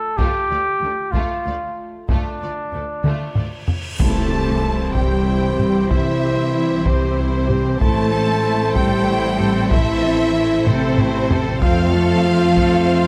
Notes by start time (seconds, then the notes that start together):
Already playing: A3 F4 A4
0.17 D2 A3 F4 G4, taiko
0.50 D2 A3 F4 D5
0.81 D2 A3 D4 A4
1.12 D2 A3 F4, taiko
1.46 D2 A3 F4 D5
2.08 D2 A3 D4 F4, taiko, cymbal swell
2.41 D2 A3 F4 D5
2.72 D2 A3 D4 A4
3.04 D2 A3 F4, taiko mid
3.35 D2 A3 F4 D5, taiko low-mid
3.68 taiko low
3.98 C2 C3 E3 G3 A3 C4 E4 A4 C5 A5, taiko, impact
4.30 C4 G4
4.62 G3 E4
4.95 C2 G3 C4 G4 G5, taiko
5.26 G3 E4
5.59 C4 G4, taiko low-mid
5.89 C2 E3 G3 E4 E5, taiko
6.23 C4 G4
6.55 G3 E4
6.84 C2 C3 C4 G4 C5, taiko
7.18 G3 E4
7.49 C4 G4, taiko low-mid
7.79 A1 E3 A3 C4 E4 A4 C5 A5, taiko
8.13 C4 A4
8.45 A3 E4
8.74 A1 G3 C4 G4 A4 G5, taiko
9.08 A3 E4
9.38 C4 A4, taiko low-mid
9.70 A1 E3 A3 E4 E5, taiko
10.04 C4 A4
10.35 A3 E4
10.65 A1 C3 C4 A4 C5, taiko low-mid
10.98 A3 E4, taiko low-mid
11.30 C4 A4, taiko low
11.59 F2 F3 A3 C4 F4 A4 C5 F5, taiko
11.93 A3 A4
12.25 C4 F4
12.56 F2 A3 A4, taiko
12.89 C4 F4